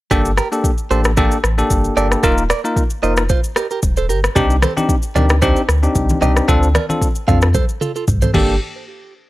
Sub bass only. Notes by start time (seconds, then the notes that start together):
0.11 G1
0.91 A1
1.44 A1
1.71 G1
1.97 G1
2.23 D#1
3.03 F1
3.83 D#1
4.09 G1
4.36 C2
5.15 D2
5.69 D2
5.95 C2
6.22 C2
6.48 D2
7.28 F2
8.08 C2
8.34 G1